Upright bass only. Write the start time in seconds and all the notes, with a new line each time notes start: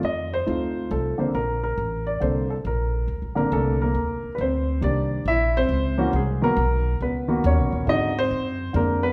0.03 F2
0.47 D2
0.91 C2
1.20 muted upright bass stroke
1.34 A#1
1.78 A1
2.21 C2
2.65 A#1
3.08 D2
3.22 A#1
3.37 A1
3.52 C2
3.95 D#2
4.23 muted upright bass stroke
4.38 D2
4.82 C2
5.25 A#1
5.69 C#2
6.13 C2
6.57 B1
7.00 C#2
7.44 D#2
7.58 B1
7.72 A#1
7.87 G#2
8.31 F#2
8.74 F2